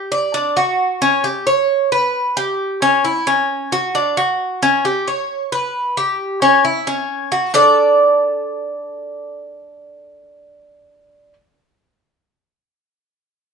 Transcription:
cuban tres
Already playing: G4
0.12 D5
0.34 D4
0.57 F#4
1.02 C#4
1.24 G4
1.47 C#5
1.92 B4
2.37 G4
2.82 C#4
3.05 E4
3.27 C#4
3.72 F#4
3.95 D4
4.17 F#4
4.63 C#4
4.85 G4
5.08 C#5
5.52 B4
5.97 G4
6.42 C#4
6.65 E4
6.87 C#4
7.32 F#4
7.54 D4 A4 D5

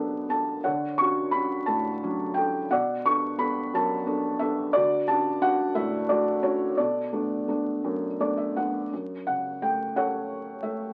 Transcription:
felt piano
Already playing: F#2 B2 B3 D4 A4 D5 B5
0.29 B3 D4 A4 A5
0.64 D3 C#5 F#5
0.98 C#4 D4 F#4 C#6
1.31 C#4 D4 F#4 B5
1.66 A2 A5
2.03 F#3 C#4 D4
2.34 C#4 D4 A4 G5
2.71 B2 D5 F#5
3.05 B3 D4 A4 C#6
3.38 B3 D4 A4 B5
3.73 F#2 A5
4.06 B3 D4 A4
4.39 B3 D4 A4 E5
4.73 D3 F#4 D5
5.08 C#4 D4 F#4 A5
5.41 C#4 D4 F#4 F#5
5.75 A2 E5
6.09 A3 D4 F#4 D5
6.42 C#4 D4 F#4 C#5
6.77 B2 A4 D5
7.13 A3 B3 D4
7.48 A3 B3 D4
7.84 F#2
8.20 A3 B3 D4 D5
8.37 E5
8.56 A3 B3 D4 F#5
8.93 F#2
9.27 C#3 F#5
9.62 A3 G5
9.96 C#4 A4 C#5 F#5
10.63 A3 E5

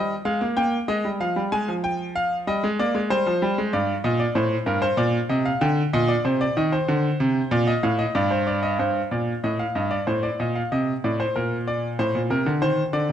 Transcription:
grand piano
Already playing: G3 D#5
0.25 G#3 F5
0.41 A#3
0.57 A#3 G5
0.88 G#3 D#5
1.05 G3
1.20 F3 F5
1.36 G3
1.52 G#3 G#5
1.68 F3
1.84 G5
2.16 F5
2.47 G3 D#5
2.64 G#3
2.79 A#3 D5
2.95 G#3
3.10 G3 C5
3.26 F3
3.42 G3
3.58 G#3
3.73 G2 D5
4.04 A#2 D#5
4.20 D5
4.35 A2 C5
4.66 G2 A#4
4.82 C5
4.97 A#2 D5
5.29 C3 D#5
5.45 F5
5.61 D3 G5
5.93 A#2 D#5
6.08 D5
6.25 C3 C5
6.41 D5
6.57 D#3 D#5
6.72 C5
6.88 D3
7.20 C3
7.51 A#2 D5
7.67 D#5
7.83 A2 F5
7.99 D#5
8.15 G2 D5
8.31 C5
8.47 D5
8.63 D#5
8.79 G2 C5
9.11 A#2 D5
9.44 A2 D#5
9.59 F5
9.75 G2 D#5
9.91 D5
10.07 A2 C5
10.23 D5
10.40 A#2 D#5
10.55 F5
10.72 C3 D#5
11.04 A2 D5
11.20 C5
11.36 A#2 A#4
11.68 D5
11.99 A2 C5
12.15 A#2
12.30 C3 A#4
12.46 D3
12.62 D#3 C5
12.93 D3 D5
13.09 C3

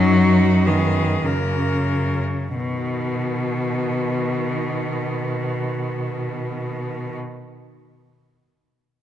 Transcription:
cello
Already playing: F#2 F#3 C#4 D#4
0.11 D#4 F#4
0.66 D#3 B3 G#4
1.21 F#2 C#3 A#3
1.26 A#4
2.55 B2 D#3 B3

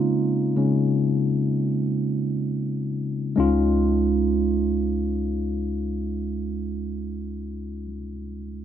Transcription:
tine electric piano
Already playing: C#3 G#3 C#4 D#4 F4
0.57 C#3 G#3 C#4
3.36 C#2 G#3 C#4 D#4 F4

